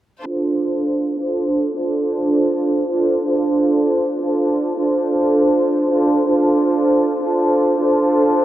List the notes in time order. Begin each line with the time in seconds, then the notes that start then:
0.26 D4 F4 A4 C5
1.20 D4 F4 A4 C5
1.77 D4 F4 A4 C5
2.91 D4 F4 A4 C5
3.28 D4 F4 A4 C5
4.22 D4 F4 A4 C5
4.79 D4 F4 A4 C5
5.92 D4 F4 A4 C5
6.30 D4 F4 A4 C5
7.24 D4 F4 A4 C5
7.80 D4 F4 A4 C5